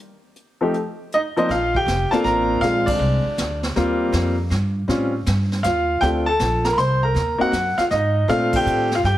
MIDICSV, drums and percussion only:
0, 0, Header, 1, 2, 480
1, 0, Start_track
1, 0, Key_signature, -2, "major"
1, 0, Tempo, 376884
1, 464, Time_signature, 3, 2, 24, 8
1, 11690, End_track
2, 0, Start_track
2, 0, Title_t, "Drums"
2, 454, Note_on_c, 9, 42, 43
2, 582, Note_off_c, 9, 42, 0
2, 940, Note_on_c, 9, 42, 53
2, 1067, Note_off_c, 9, 42, 0
2, 1427, Note_on_c, 9, 42, 52
2, 1554, Note_off_c, 9, 42, 0
2, 1744, Note_on_c, 9, 42, 47
2, 1871, Note_off_c, 9, 42, 0
2, 1910, Note_on_c, 9, 25, 49
2, 1910, Note_on_c, 9, 38, 41
2, 2037, Note_off_c, 9, 38, 0
2, 2222, Note_on_c, 9, 36, 53
2, 2350, Note_off_c, 9, 36, 0
2, 2391, Note_on_c, 9, 38, 63
2, 2391, Note_on_c, 9, 44, 49
2, 2519, Note_off_c, 9, 38, 0
2, 2519, Note_off_c, 9, 44, 0
2, 2702, Note_on_c, 9, 38, 38
2, 2829, Note_off_c, 9, 38, 0
2, 2871, Note_on_c, 9, 38, 46
2, 2998, Note_off_c, 9, 38, 0
2, 3344, Note_off_c, 9, 25, 0
2, 3344, Note_on_c, 9, 25, 43
2, 3344, Note_on_c, 9, 38, 43
2, 3471, Note_off_c, 9, 38, 0
2, 3656, Note_on_c, 9, 36, 82
2, 3658, Note_on_c, 9, 49, 70
2, 3784, Note_off_c, 9, 36, 0
2, 3786, Note_off_c, 9, 49, 0
2, 4304, Note_on_c, 9, 38, 60
2, 4304, Note_on_c, 9, 44, 61
2, 4432, Note_off_c, 9, 38, 0
2, 4432, Note_off_c, 9, 44, 0
2, 4623, Note_on_c, 9, 38, 52
2, 4751, Note_off_c, 9, 38, 0
2, 4785, Note_off_c, 9, 25, 0
2, 4785, Note_on_c, 9, 25, 49
2, 4785, Note_on_c, 9, 38, 46
2, 4913, Note_off_c, 9, 38, 0
2, 5260, Note_on_c, 9, 38, 62
2, 5260, Note_on_c, 9, 44, 48
2, 5388, Note_off_c, 9, 38, 0
2, 5388, Note_off_c, 9, 44, 0
2, 5742, Note_on_c, 9, 38, 46
2, 5870, Note_off_c, 9, 38, 0
2, 6230, Note_off_c, 9, 25, 0
2, 6230, Note_on_c, 9, 25, 47
2, 6230, Note_on_c, 9, 38, 45
2, 6358, Note_off_c, 9, 38, 0
2, 6707, Note_on_c, 9, 38, 64
2, 6707, Note_on_c, 9, 44, 53
2, 6834, Note_off_c, 9, 38, 0
2, 6834, Note_off_c, 9, 44, 0
2, 7028, Note_on_c, 9, 38, 37
2, 7155, Note_off_c, 9, 38, 0
2, 7184, Note_on_c, 9, 38, 64
2, 7184, Note_on_c, 9, 44, 64
2, 7312, Note_off_c, 9, 38, 0
2, 7312, Note_off_c, 9, 44, 0
2, 7668, Note_off_c, 9, 25, 0
2, 7668, Note_on_c, 9, 25, 45
2, 7668, Note_on_c, 9, 38, 40
2, 7796, Note_off_c, 9, 38, 0
2, 8147, Note_on_c, 9, 38, 59
2, 8147, Note_on_c, 9, 44, 54
2, 8274, Note_off_c, 9, 38, 0
2, 8274, Note_off_c, 9, 44, 0
2, 8463, Note_on_c, 9, 38, 61
2, 8590, Note_off_c, 9, 38, 0
2, 8631, Note_on_c, 9, 38, 47
2, 8758, Note_off_c, 9, 38, 0
2, 9111, Note_off_c, 9, 25, 0
2, 9111, Note_on_c, 9, 25, 51
2, 9111, Note_on_c, 9, 38, 44
2, 9239, Note_off_c, 9, 38, 0
2, 9590, Note_on_c, 9, 38, 61
2, 9590, Note_on_c, 9, 44, 56
2, 9718, Note_off_c, 9, 38, 0
2, 9718, Note_off_c, 9, 44, 0
2, 9906, Note_on_c, 9, 38, 39
2, 10034, Note_off_c, 9, 38, 0
2, 10070, Note_on_c, 9, 38, 45
2, 10197, Note_off_c, 9, 38, 0
2, 10556, Note_off_c, 9, 25, 0
2, 10556, Note_on_c, 9, 25, 50
2, 10556, Note_on_c, 9, 38, 41
2, 10683, Note_off_c, 9, 38, 0
2, 10861, Note_on_c, 9, 49, 77
2, 10864, Note_on_c, 9, 36, 84
2, 10989, Note_off_c, 9, 49, 0
2, 10991, Note_off_c, 9, 36, 0
2, 11037, Note_on_c, 9, 44, 48
2, 11165, Note_off_c, 9, 44, 0
2, 11350, Note_on_c, 9, 38, 41
2, 11477, Note_off_c, 9, 38, 0
2, 11516, Note_on_c, 9, 38, 45
2, 11644, Note_off_c, 9, 38, 0
2, 11690, Note_off_c, 9, 25, 0
2, 11690, End_track
0, 0, End_of_file